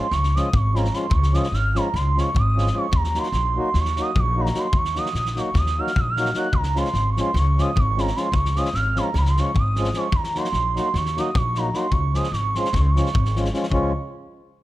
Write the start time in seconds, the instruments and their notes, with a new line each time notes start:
Already playing: soft synth lead C6
0.11 upright bass C#2, soft synth lead C#6, snare
0.23 snare
0.35 accordion F3 G#3 C#4 F4, soft synth lead D#6, snare
0.53 upright bass G#1, soft synth lead C#6, kick
0.73 accordion F3 G#3 C#4 F4, soft synth lead A#5, snare
0.85 snare
0.93 accordion F3 G#3 C#4 F4, soft synth lead C6, snare
1.10 upright bass C#2, soft synth lead C#6, kick
1.23 snare
1.33 accordion F3 G#3 C#4 F4, soft synth lead D#6, snare
1.43 snare
1.52 upright bass G#1, soft synth lead F6, snare
1.75 accordion F3 G#3 C#4 F4, soft synth lead A#5, snare
1.94 upright bass C#2, soft synth lead C6, snare
2.15 accordion F3 G#3 C#4 F4, soft synth lead C#6, snare
2.34 upright bass G#1, kick
2.39 soft synth lead D#6
2.55 accordion F3 G#3 C#4 F4, snare
2.66 snare
2.72 accordion F3 G#3 C#4 F4
2.78 soft synth lead C#6
2.92 upright bass D#2, soft synth lead A#5, kick
3.04 snare
3.14 accordion F#3 A#3 D#4 F#4, snare
3.18 soft synth lead C6
3.23 snare
3.32 upright bass A#1, snare
3.55 accordion F#3 A#3 D#4 F#4
3.60 soft synth lead C6
3.74 upright bass D#2, snare
3.79 soft synth lead C#6
3.85 snare
3.96 accordion F#3 A#3 D#4 F#4, snare
4.01 soft synth lead D#6
4.15 upright bass A#1, soft synth lead C#6, kick
4.36 accordion F#3 A#3 D#4 F#4
4.40 soft synth lead A#5
4.46 snare
4.53 accordion F#3 A#3 D#4 F#4, snare
4.58 soft synth lead C6
4.73 upright bass D#2, kick
4.77 soft synth lead C#6
4.85 snare
4.94 accordion F#3 A#3 D#4 F#4, soft synth lead D#6, snare
5.05 snare
5.13 upright bass A#1, soft synth lead D#6, snare
5.25 snare
5.30 soft synth lead D#6
5.35 accordion F#3 A#3 D#4 F#4, soft synth lead C#6, snare
5.54 upright bass D#2, soft synth lead D#6, kick, snare
5.66 snare
5.77 accordion F#3 A#3 D#4 F#4, soft synth lead F6
5.87 snare
5.96 upright bass A#1, soft synth lead D#6 F6, kick
6.10 soft synth lead F6
6.16 accordion F#3 A#3 D#4 F#4, snare
6.25 snare
6.34 accordion F#3 A#3 D#4 F#4, soft synth lead F#6, snare
6.53 upright bass C#2, soft synth lead A#5, kick
6.63 snare
6.75 accordion F3 G#3 C#4 F4, soft synth lead C6, snare
6.85 snare
6.94 upright bass G#1, snare
7.10 soft synth lead C#6
7.16 accordion F3 G#3 C#4 F4, soft synth lead C6, snare
7.34 upright bass C#2, soft synth lead C#6, snare
7.58 accordion F3 G#3 C#4 F4, soft synth lead D#6, snare
7.76 upright bass G#1, soft synth lead C#6, kick
7.96 accordion F3 G#3 C#4 F4, soft synth lead A#5, snare
8.07 snare
8.16 accordion F3 G#3 C#4 F4, soft synth lead C6, snare
8.32 upright bass C#2, soft synth lead C#6, kick
8.45 snare
8.56 accordion F3 G#3 C#4 F4, soft synth lead D#6, snare
8.65 snare
8.73 upright bass G#1, soft synth lead F6, snare
8.96 accordion F3 G#3 C#4 F4, soft synth lead A#5, snare
9.14 upright bass C#2, soft synth lead C6, snare
9.21 soft synth lead A#5
9.25 soft synth lead C6, snare
9.37 accordion F3 G#3 C#4 F4, soft synth lead C#6, snare
9.54 upright bass G#1, kick
9.59 soft synth lead D#6
9.75 accordion F3 G#3 C#4 F4, snare
9.84 snare
9.93 accordion F3 G#3 C#4 F4, soft synth lead C#6, snare
10.12 upright bass D#2, soft synth lead A#5, kick
10.24 snare
10.35 accordion F#3 A#3 D#4 F#4, soft synth lead C6, snare
10.44 snare
10.52 upright bass A#1, snare
10.74 accordion F#3 A#3 D#4 F#4, soft synth lead C6, snare
10.94 upright bass D#2, soft synth lead C#6, snare
11.05 snare
11.16 accordion F#3 A#3 D#4 F#4, soft synth lead D#6, snare
11.35 upright bass A#1, soft synth lead C#6, kick
11.55 accordion F#3 A#3 D#4 F#4, soft synth lead A#5, snare
11.73 accordion F#3 A#3 D#4 F#4, soft synth lead C6, snare
11.91 upright bass C#2, soft synth lead C#6, kick
12.14 accordion F3 G#3 C#4 F4, soft synth lead D#6, snare
12.23 snare
12.32 upright bass G#1, soft synth lead C#6, snare
12.55 accordion F3 G#3 C#4 F4, soft synth lead C6, snare
12.65 snare
12.73 upright bass C#2, soft synth lead C#6, kick, snare
12.80 soft synth lead C6
12.89 soft synth lead C#6
12.95 accordion F3 G#3 C#4 F4, snare
13.06 snare
13.14 upright bass G#1, kick
13.25 snare
13.35 accordion F3 G#3 C#4 F4, snare
13.45 snare
13.52 accordion F3 G#3 C#4 F4, snare
13.63 snare
13.70 upright bass C#2, accordion F3 G#3 C#4 F4, soft synth lead C#6, kick